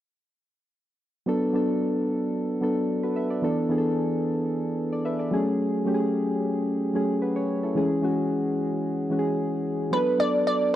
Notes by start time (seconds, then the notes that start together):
1.26 F#3 B3 D4 A4
1.53 F#3 B3 D4 A4
2.61 F#3 B3 D4 A4
3.03 F#4 B4
3.16 B4 E5
3.30 A4 D5
3.42 E3 B3 D4 A4
3.69 E3 B3 D4 G#4
3.78 A4
4.93 A4 D5
5.05 B4 E5
5.19 A4 D5
5.31 F#3 A3 C#4 G#4
5.85 F#3 A3 C#4 G4
5.94 G#4
6.93 F#3 A3 C#4 G#4
7.22 F#4 B4
7.36 G#4 C#5
7.63 E4 A4
7.75 E3 G#3 C#4 G#4
8.02 E3 G#3 C#4 F#4
9.10 E3 G#3 C#4 F#4
9.19 G#4
9.91 F#3 B3 D4 A4 B4
10.18 F#3 B3 D4 A4 D5
10.47 D5